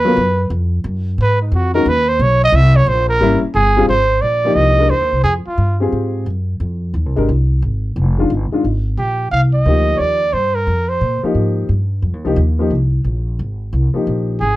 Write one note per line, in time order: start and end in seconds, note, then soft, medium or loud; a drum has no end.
0.00 0.15 D#2 medium
0.00 0.51 B4 medium
0.05 0.15 F#3 medium
0.05 0.15 B3 medium
0.05 0.16 F4 medium
0.05 0.16 A#4 medium
0.17 0.49 F#2 medium
0.50 0.83 F2 medium
0.84 1.17 F#2 medium
1.18 1.51 G#2 medium
1.18 1.40 B4 medium
1.42 1.56 D#4 soft
1.52 1.84 F2 medium
1.52 1.74 F#4 medium
1.74 1.84 D#3 medium
1.74 1.85 G#3 medium
1.74 1.85 C#4 medium
1.74 1.85 F#4 medium
1.74 1.90 A#4 medium
1.86 2.18 D#2 medium
1.86 2.10 B4 medium
2.09 2.24 C5 medium
2.19 2.52 B1 medium
2.19 2.42 C#5 medium
2.44 2.57 D#5 loud
2.52 2.86 C2 loud
2.52 2.77 E5 loud
2.76 2.90 C#5 loud
2.86 3.19 A#1 loud
2.86 3.08 C5 medium
3.09 3.40 A#4 medium
3.21 3.41 G#1 medium
3.21 3.40 G3 medium
3.21 3.41 A#3 medium
3.21 3.41 C#4 medium
3.21 3.41 E4 medium
3.42 muted upright bass stroke soft
3.55 3.87 G1 medium
3.55 3.86 G#4 loud
3.77 3.88 G3 medium
3.77 3.88 C4 medium
3.77 3.88 F4 medium
3.77 3.88 G#4 medium
3.88 4.21 G#1 medium
3.88 4.23 C5 medium
4.21 4.55 A#1 medium
4.21 4.56 D5 medium
4.45 4.76 F3 medium
4.45 4.76 A#3 medium
4.45 4.77 D#4 medium
4.45 4.77 G4 medium
4.55 4.89 C2 medium
4.55 4.92 D#5 loud
4.79 4.89 G#3 medium
4.79 4.90 D4 soft
4.79 4.90 G4 soft
4.79 4.90 A#4 medium
4.89 5.01 E2 medium
4.89 5.23 C5 medium
5.01 5.12 D#2 soft
5.12 5.23 C2 medium
5.23 5.44 F2 medium
5.23 5.34 G#4 medium
5.47 5.78 F4 medium
5.47 muted upright bass stroke soft
5.58 5.91 G2 medium
5.80 6.24 C4 medium
5.80 6.24 F4 medium
5.80 6.24 G4 medium
5.80 6.25 G#4 medium
5.92 6.25 G#2 medium
6.26 6.59 F#2 medium
6.60 6.93 F2 medium
6.94 7.06 D#2 medium
7.06 7.16 C2 medium
7.16 7.27 G#1 medium
7.16 7.27 G#3 medium
7.16 7.27 D4 medium
7.16 7.28 G4 medium
7.16 7.28 A#4 medium
7.29 7.61 C2 medium
7.62 7.95 G#1 medium
7.96 8.29 F1 medium
8.18 8.29 D#3 medium
8.18 8.29 G#3 medium
8.18 8.29 D4 medium
8.18 8.30 F4 medium
8.30 8.50 G1 medium
8.52 8.63 D#3 medium
8.52 8.63 G#3 medium
8.52 8.63 D4 medium
8.52 8.64 F4 medium
8.52 muted upright bass stroke soft
8.64 8.97 G#1 medium
8.98 9.31 A#1 medium
8.98 9.29 G4 medium
9.31 9.64 C2 medium
9.31 9.41 F5 medium
9.53 9.98 D#5 medium
9.65 9.98 D2 medium
9.65 10.17 F3 medium
9.65 10.17 A#3 medium
9.65 10.18 D#4 medium
9.65 10.18 G4 medium
9.97 10.32 D#2 medium
9.97 10.01 C#5 medium
9.97 10.35 D5 medium
10.33 10.66 G2 medium
10.33 10.56 C5 medium
10.55 10.90 A#4 medium
10.67 11.00 F2 medium
10.89 11.23 C5 medium
11.01 11.21 A#2 medium
11.23 11.67 F3 medium
11.23 11.67 A#3 medium
11.23 11.67 D#4 medium
11.23 11.68 G4 medium
11.23 muted upright bass stroke soft
11.35 11.68 G#2 medium
11.69 12.02 G2 medium
12.02 12.13 F2 medium
12.13 12.25 D#2 soft
12.25 12.36 C2 medium
12.25 12.36 F3 medium
12.25 12.36 A#3 medium
12.25 12.36 D#4 medium
12.25 12.37 G4 medium
12.36 12.69 D#2 medium
12.59 12.70 F3 medium
12.59 12.70 A#3 medium
12.59 12.70 D#4 medium
12.59 12.71 G4 medium
12.70 13.03 C2 medium
13.04 13.37 A#1 medium
13.39 13.72 G#1 medium
13.73 13.93 C2 medium
13.94 14.38 F3 medium
13.94 14.38 A#3 medium
13.94 14.38 D#4 medium
13.94 14.39 G4 medium
13.94 muted upright bass stroke soft
14.07 14.40 A#1 medium
14.40 14.56 G#1 medium
14.40 14.56 G#4 medium